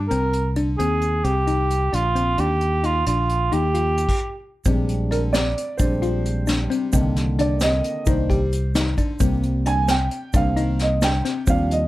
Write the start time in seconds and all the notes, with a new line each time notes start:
0.08 C2 C4 A#4, closed hi-hat
0.33 closed hi-hat
0.56 D4, closed hi-hat
0.78 D#2 C4 G#4, closed hi-hat
1.01 closed hi-hat
1.24 C2 C4 G4, closed hi-hat
1.47 D#4, closed hi-hat
1.70 closed hi-hat
1.93 A#1 D4 F4, closed hi-hat
2.15 C4, closed hi-hat
2.38 D#2 D4 G4, closed hi-hat
2.61 closed hi-hat
2.84 D#4 F4, closed hi-hat
3.06 A#1 D4 F4, closed hi-hat
3.29 closed hi-hat
3.52 D#2 D#4 G4, closed hi-hat
3.74 F4, closed hi-hat
3.97 closed hi-hat
4.09 kick, crash
4.65 A#1 G3 G#3 C4 D4, kick, closed hi-hat, shaker
4.89 closed hi-hat
5.11 D4 A#4, closed hi-hat
5.33 C4 D5, snare, closed hi-hat, shaker
5.58 closed hi-hat
5.77 A#1 G3 G#3 C4 D4 C5, kick, closed hi-hat, shaker
6.02 F4, closed hi-hat
6.25 closed hi-hat
6.47 D4, snare, closed hi-hat, shaker
6.70 C4, closed hi-hat
6.92 C2 D3 D#3 A#3 C4, kick, closed hi-hat, shaker
7.16 snare, closed hi-hat
7.39 D4 D5, closed hi-hat
7.60 C4 D#5, snare, closed hi-hat, shaker
7.84 closed hi-hat
8.06 C2 D#3 A#3 D4 D#4 C5, kick, closed hi-hat, shaker
8.30 G4, kick, closed hi-hat
8.52 closed hi-hat, shaker
8.75 D#4, snare, closed hi-hat, shaker
8.98 D4, kick, closed hi-hat, shaker
9.20 C2 G3 A#3 C4, kick, closed hi-hat, shaker
9.43 closed hi-hat
9.66 D4 G#5, closed hi-hat
9.88 C4 G5, snare, closed hi-hat, shaker
10.11 closed hi-hat
10.33 C2 G3 A#3 C4 D4 F5, kick, closed hi-hat, shaker
10.56 D#4, closed hi-hat
10.79 D#5, snare, closed hi-hat
11.02 D4 G5, snare, closed hi-hat, shaker
11.25 C4, snare, closed hi-hat
11.47 D#2 F3 G3 C4 D4 F5, kick, closed hi-hat, shaker
11.71 D#5, closed hi-hat